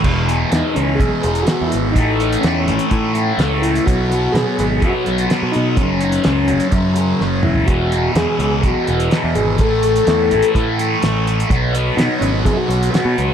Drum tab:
CC |x---------------|----------------|----------------|----------------|
HH |--x-x-x-x-xxx-x-|x-xxx-xxx-x-x-xx|x-x-x-x-x-xxx-x-|x-xxx-xxx-x-----|
SD |----o-------o-o-|----o-------o---|----o-------o---|----o-------o---|
T2 |----------------|----------------|----------------|--------------o-|
FT |----------------|----------------|----------------|---------------o|
BD |o-------o-------|o-------o-------|o-------o-------|o-------o-------|

CC |----------------|----------------|----------------|
HH |x-x-x-x-x-xxx-x-|x-xxx-xxx-x-x-xx|x-x-x-x-x-xxx-x-|
SD |----o-------o---|----o-------o---|----o-------o---|
T2 |----------------|----------------|----------------|
FT |----------------|----------------|----------------|
BD |o-------o-------|o-------o-------|o-------o-------|